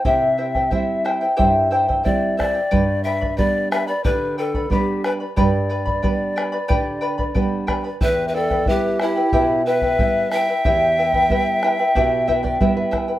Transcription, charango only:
\new Staff \with { instrumentName = "Charango" } { \time 4/4 \key e \minor \tempo 4 = 91 <e' g' c'' e'' g''>8 <e' c'' e'' g''>16 <e' c'' g''>16 <e' c'' e'' g''>8 <e' c'' e'' g''>16 <e' c'' g''>16 <e' g' c'' e'' g''>8 <e' c'' e'' g''>16 <e' c'' g''>16 <e' c'' e'' g''>8 <e' c'' e'' g''>16 <e' c'' g''>16 | <g' b' d'' g'' b''>8 <b' d'' g'' b''>16 <b' d'' b''>16 <b' d'' g'' b''>8 <b' d'' g'' b''>16 <b' d'' b''>16 <g' b' d'' g'' b''>8 <b' d'' g'' b''>16 <b' d'' b''>16 <b' d'' g'' b''>8 <b' d'' g'' b''>16 <b' d'' b''>16 | <g' b' d'' g'' b''>8 <b' d'' g'' b''>16 <b' d'' b''>16 <b' d'' g'' b''>8 <b' d'' g'' b''>16 <b' d'' b''>16 <g' b' d'' g'' b''>8 <b' d'' g'' b''>16 <b' d'' b''>16 <b' d'' g'' b''>8 <b' d'' g'' b''>16 <b' d'' b''>16 | <e' g' b' e'' g''>8 <e' b' e'' g''>16 <e' b' g''>16 <e' b' e'' g''>8 <e' b' e'' g''>16 <e' b' g''>16 <e' g' b' e'' g''>8 <e' b' e'' g''>16 <e' b' g''>16 <e' b' e'' g''>8 <e' b' e'' g''>16 <e' b' g''>16 |
<e' g' b' e'' g''>8 <e' b' e'' g''>16 <e' b' g''>16 <e' b' e'' g''>8 <e' b' e'' g''>16 <e' b' g''>16 <e' g' b' e'' g''>8 <e' b' e'' g''>16 <e' b' g''>16 <e' b' e'' g''>8 <e' b' e'' g''>16 <e' b' g''>16 | }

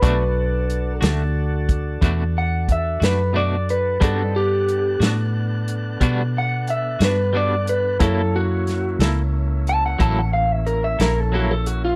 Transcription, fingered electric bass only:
\new Staff \with { instrumentName = "Fingered electric bass" } { \clef bass \time 12/8 \key b \minor \tempo 4. = 60 b,,4. d,4. e,4. fis,4. | g,4. a,4. b,4. g,4. | fis,4. cis,4. a,,4. ais,,4. | }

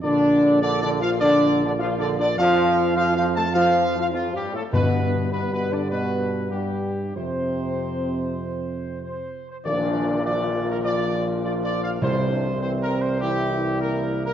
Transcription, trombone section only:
\new Staff \with { instrumentName = "Trombone section" } { \clef bass \time 4/4 \key f \lydian \tempo 4 = 102 << { d4 \tuplet 3/2 { d8 d8 f8 } d8. d16 \tuplet 3/2 { f8 d8 d8 } | f4 \tuplet 3/2 { f8 f8 a8 } f8. f16 \tuplet 3/2 { f,8 g,8 a,8 } | b,4 \tuplet 3/2 { b,8 b,8 d8 } b,4 g,4 | c2.~ c8 r8 |
\key bes \lydian f'4 f'4 f'4 f'4 | c'4 c'4 c'4 bes4 | } \\ { r1 | r1 | r1 | r1 |
f4 f4 f4 f4 | e4 e4 e2 | } >> }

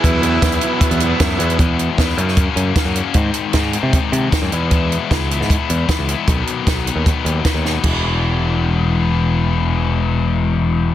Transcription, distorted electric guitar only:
\new Staff \with { instrumentName = "Distorted electric guitar" } { \clef bass \time 4/4 \key e \major \tempo 4 = 153 <e fis b e'>8 <e fis b e'>8 <e fis b e'>8 <e fis b e'>8 <e fis b e'>8 <e fis b e'>8 <e fis b e'>8 <e fis b e'>8 | <e gis b e'>4 <e gis b e'>8 <fis, cis fis ais cis'>8 <fis, cis fis ais cis'>4 <fis, cis fis ais cis'>8 <fis, cis fis ais cis'>8 | <gis, dis gis bis dis'>4 <gis, dis gis bis dis'>8 <gis, dis gis bis dis'>8 <gis, dis gis bis dis'>4 <gis, dis gis bis dis'>8 <e gis b e'>8 | <e gis b e'>4 <e gis b e'>8 <e gis b e'>8 <e gis b e'>4 <e gis b e'>8 <e gis b e'>8 |
<b, dis fis b dis'>4 <b, dis fis b dis'>8 <b, dis fis b dis'>8 <b, dis fis b dis'>4 <b, dis fis b dis'>8 <b, dis fis b dis'>8 | <e gis b e'>1~ | <e gis b e'>1 | }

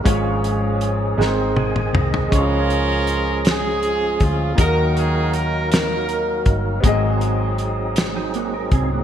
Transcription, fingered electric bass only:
\new Staff \with { instrumentName = "Fingered electric bass" } { \clef bass \time 6/8 \key des \major \tempo 4. = 53 aes,,4. aes,,4 c,8 | des,2~ des,8 d,8 | ees,2~ ees,8 g,,8 | aes,,2~ aes,,8 c,8 | }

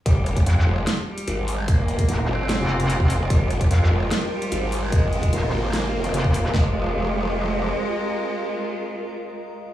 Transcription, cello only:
\new Staff \with { instrumentName = "Cello" } { \clef bass \time 4/4 \key f \minor \tempo 4 = 148 g8 r8 f4. g4. | bes4. c'2~ c'8 | g8 r8 f4. g4. | aes4. bes2~ bes8 |
aes1~ | aes1 | }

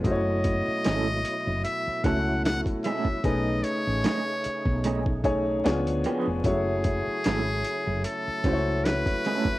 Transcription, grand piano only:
\new Staff \with { instrumentName = "Grand piano" } { \time 4/4 \key fis \dorian \tempo 4 = 75 <a cis' e' fis' bis' cis''>2 r8 <a cis' e' fis' a'>4. | <a cis' dis' gis' b'>2 r8 <a cis' dis' gis' cis''>8 <b d' eis' gis' cis''>4 | <a cis' e' fis' cis''>2 r8 <a cis' e' fis' bis' cis''>4. | }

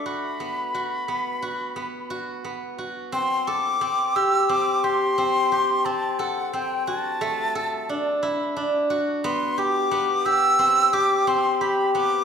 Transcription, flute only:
\new Staff \with { instrumentName = "Flute" } { \time 9/8 \key a \dorian \tempo 4. = 59 b''2.~ b''8 r4 | c'''8 d'''4 e'''8 d'''8 c'''4. a''8 | fis''8 g''8 a''2 r4. | c'''8 d'''4 e'''4 d'''8 c'''8 b''8 d'''8 | }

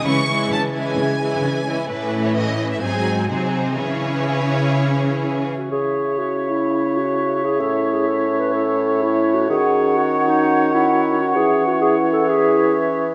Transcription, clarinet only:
\new Staff \with { instrumentName = "Clarinet" } { \time 4/4 \key cis \minor \tempo 4 = 128 r1 | r1 | r2. \tuplet 3/2 { e'4 fis'8 } | gis'4 \tuplet 3/2 { fis'4 e'8~ e'4 fis'8~ fis'4 gis'8 } |
\tuplet 3/2 { a'4 gis'8 a'4 b'8 } a'4 \tuplet 3/2 { e'4 fis'8 } | gis'4 \tuplet 3/2 { fis'4 dis'8~ dis'4 e'8~ e'4 fis'8 } | \tuplet 3/2 { gis'4 fis'8 gis'4 a'8 } gis'4 r4 | }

